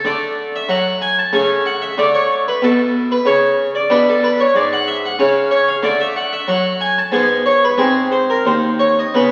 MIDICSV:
0, 0, Header, 1, 2, 480
1, 0, Start_track
1, 0, Tempo, 644468
1, 32, Time_signature, 3, 2, 24, 8
1, 5311, Tempo, 663717
1, 6271, Tempo, 702576
1, 6857, End_track
2, 0, Start_track
2, 0, Title_t, "Harpsichord"
2, 0, Program_c, 0, 6
2, 34, Note_on_c, 0, 57, 37
2, 36, Note_on_c, 0, 50, 56
2, 40, Note_on_c, 0, 74, 85
2, 348, Note_off_c, 0, 74, 0
2, 415, Note_on_c, 0, 76, 69
2, 424, Note_off_c, 0, 50, 0
2, 512, Note_on_c, 0, 54, 58
2, 518, Note_on_c, 0, 78, 90
2, 527, Note_off_c, 0, 76, 0
2, 723, Note_off_c, 0, 78, 0
2, 756, Note_on_c, 0, 80, 99
2, 879, Note_off_c, 0, 80, 0
2, 884, Note_on_c, 0, 81, 87
2, 901, Note_off_c, 0, 54, 0
2, 973, Note_off_c, 0, 57, 0
2, 989, Note_on_c, 0, 49, 51
2, 989, Note_on_c, 0, 57, 40
2, 993, Note_on_c, 0, 80, 81
2, 1003, Note_off_c, 0, 81, 0
2, 1201, Note_off_c, 0, 80, 0
2, 1234, Note_on_c, 0, 78, 86
2, 1354, Note_on_c, 0, 76, 74
2, 1358, Note_off_c, 0, 78, 0
2, 1378, Note_off_c, 0, 49, 0
2, 1446, Note_off_c, 0, 57, 0
2, 1473, Note_on_c, 0, 50, 61
2, 1475, Note_on_c, 0, 57, 47
2, 1478, Note_off_c, 0, 76, 0
2, 1479, Note_on_c, 0, 74, 105
2, 1597, Note_on_c, 0, 73, 71
2, 1600, Note_off_c, 0, 74, 0
2, 1802, Note_off_c, 0, 73, 0
2, 1847, Note_on_c, 0, 71, 73
2, 1858, Note_off_c, 0, 50, 0
2, 1953, Note_on_c, 0, 47, 66
2, 1962, Note_off_c, 0, 71, 0
2, 1962, Note_on_c, 0, 69, 86
2, 2314, Note_off_c, 0, 69, 0
2, 2321, Note_on_c, 0, 71, 96
2, 2333, Note_off_c, 0, 47, 0
2, 2423, Note_on_c, 0, 49, 60
2, 2433, Note_on_c, 0, 73, 93
2, 2434, Note_off_c, 0, 71, 0
2, 2735, Note_off_c, 0, 73, 0
2, 2793, Note_on_c, 0, 74, 81
2, 2807, Note_off_c, 0, 49, 0
2, 2873, Note_off_c, 0, 57, 0
2, 2904, Note_on_c, 0, 62, 45
2, 2905, Note_on_c, 0, 47, 64
2, 2910, Note_off_c, 0, 74, 0
2, 2912, Note_on_c, 0, 71, 101
2, 3030, Note_off_c, 0, 71, 0
2, 3044, Note_on_c, 0, 69, 78
2, 3156, Note_off_c, 0, 69, 0
2, 3157, Note_on_c, 0, 71, 88
2, 3273, Note_off_c, 0, 71, 0
2, 3280, Note_on_c, 0, 73, 82
2, 3292, Note_off_c, 0, 47, 0
2, 3386, Note_on_c, 0, 44, 67
2, 3395, Note_off_c, 0, 73, 0
2, 3395, Note_on_c, 0, 74, 104
2, 3512, Note_off_c, 0, 74, 0
2, 3521, Note_on_c, 0, 78, 97
2, 3632, Note_on_c, 0, 76, 104
2, 3634, Note_off_c, 0, 78, 0
2, 3748, Note_off_c, 0, 76, 0
2, 3765, Note_on_c, 0, 78, 89
2, 3768, Note_off_c, 0, 44, 0
2, 3834, Note_off_c, 0, 62, 0
2, 3866, Note_on_c, 0, 61, 44
2, 3867, Note_on_c, 0, 49, 65
2, 3870, Note_on_c, 0, 77, 89
2, 3874, Note_off_c, 0, 78, 0
2, 4071, Note_off_c, 0, 77, 0
2, 4105, Note_on_c, 0, 73, 98
2, 4225, Note_off_c, 0, 73, 0
2, 4231, Note_on_c, 0, 77, 85
2, 4251, Note_off_c, 0, 49, 0
2, 4317, Note_off_c, 0, 61, 0
2, 4339, Note_on_c, 0, 57, 47
2, 4340, Note_on_c, 0, 50, 61
2, 4348, Note_on_c, 0, 74, 109
2, 4350, Note_off_c, 0, 77, 0
2, 4469, Note_off_c, 0, 74, 0
2, 4472, Note_on_c, 0, 76, 81
2, 4590, Note_on_c, 0, 78, 94
2, 4591, Note_off_c, 0, 76, 0
2, 4710, Note_off_c, 0, 78, 0
2, 4711, Note_on_c, 0, 76, 75
2, 4729, Note_off_c, 0, 50, 0
2, 4825, Note_on_c, 0, 54, 61
2, 4830, Note_off_c, 0, 76, 0
2, 4832, Note_on_c, 0, 78, 100
2, 5070, Note_off_c, 0, 78, 0
2, 5070, Note_on_c, 0, 80, 101
2, 5190, Note_off_c, 0, 80, 0
2, 5201, Note_on_c, 0, 81, 103
2, 5212, Note_off_c, 0, 54, 0
2, 5277, Note_off_c, 0, 57, 0
2, 5302, Note_on_c, 0, 44, 54
2, 5303, Note_on_c, 0, 59, 46
2, 5309, Note_on_c, 0, 80, 82
2, 5317, Note_off_c, 0, 81, 0
2, 5548, Note_off_c, 0, 80, 0
2, 5548, Note_on_c, 0, 73, 92
2, 5669, Note_off_c, 0, 73, 0
2, 5680, Note_on_c, 0, 71, 69
2, 5689, Note_off_c, 0, 44, 0
2, 5757, Note_off_c, 0, 59, 0
2, 5777, Note_on_c, 0, 44, 59
2, 5778, Note_on_c, 0, 60, 44
2, 5781, Note_on_c, 0, 68, 97
2, 5795, Note_off_c, 0, 71, 0
2, 6024, Note_on_c, 0, 72, 88
2, 6026, Note_off_c, 0, 68, 0
2, 6147, Note_off_c, 0, 72, 0
2, 6157, Note_on_c, 0, 70, 74
2, 6168, Note_off_c, 0, 44, 0
2, 6269, Note_on_c, 0, 39, 57
2, 6275, Note_off_c, 0, 70, 0
2, 6275, Note_on_c, 0, 72, 88
2, 6501, Note_on_c, 0, 73, 81
2, 6509, Note_off_c, 0, 72, 0
2, 6625, Note_off_c, 0, 73, 0
2, 6636, Note_on_c, 0, 75, 77
2, 6652, Note_off_c, 0, 39, 0
2, 6716, Note_off_c, 0, 60, 0
2, 6737, Note_on_c, 0, 59, 37
2, 6739, Note_on_c, 0, 49, 45
2, 6745, Note_on_c, 0, 71, 77
2, 6753, Note_off_c, 0, 75, 0
2, 6857, Note_off_c, 0, 49, 0
2, 6857, Note_off_c, 0, 59, 0
2, 6857, Note_off_c, 0, 71, 0
2, 6857, End_track
0, 0, End_of_file